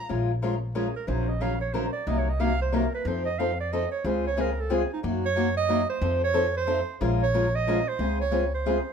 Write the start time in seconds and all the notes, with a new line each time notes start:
0.09 A#1 F3 G#3 C#4 F4 A#4
0.42 F3 G#3 C#4 F4 A#4
0.75 F3 G#3 C#4 F4 G#4 A#4
0.96 A#4
1.07 A#1 C#3 F#3 C#4 D#4 A#4 C5
1.29 D#5
1.40 C#3 F#3 C#4 D#4 A#4 F5
1.61 C#5
1.73 C#3 F#3 C#4 D#4 A#4 C5
1.93 D5
2.06 C2 C3 F#3 A#3 D#4 A#4 D#5
2.18 C#5
2.29 D#5
2.40 C3 F#3 A#3 D#4 A#4 F5
2.62 C5
2.72 C3 F#3 A#3 D#4 A#4
2.95 B4
3.05 F2 F3 C4 D#4 A4 C5
3.25 D#5
3.39 F3 C4 D#4 A4 F5
3.60 D5
3.72 F3 C4 D#4 A4 D#5
3.92 C#5
4.04 C#2 C#3 G#3 C4 F4 G#4 C5
4.27 C#5
4.37 C#3 G#3 C4 F4 G#4
4.41 A#4
4.61 A4
4.70 C#3 G#3 C4 F4 G#4
4.74 G#4
4.93 D#4
5.03 F#2 F#3 A#3 D#4 F#4
5.25 C#5
5.36 F#3 A#3 D#4 F#4
5.57 D#5
5.69 F#3 A#3 D#4 F#4
5.90 C5
6.01 F2 F3 C4 D#4 A4
6.24 C#5
6.34 F3 C4 D#4 A4
6.57 C5
6.67 F3 C4 D#4 A4
7.01 A#1 F3 G#3 C#4 F4 A#4
7.23 C#5
7.34 F3 G#3 C#4 F4 A#4
7.55 D#5
7.67 F3 G#3 C#4 F4 A#4
7.88 C5
7.99 C#2 C#3 G#3 C4 F4 G#4
8.21 C#5
8.31 C#3 G#3 C4 F4 G#4
8.54 C5
8.66 C#3 G#3 C4 F4 G#4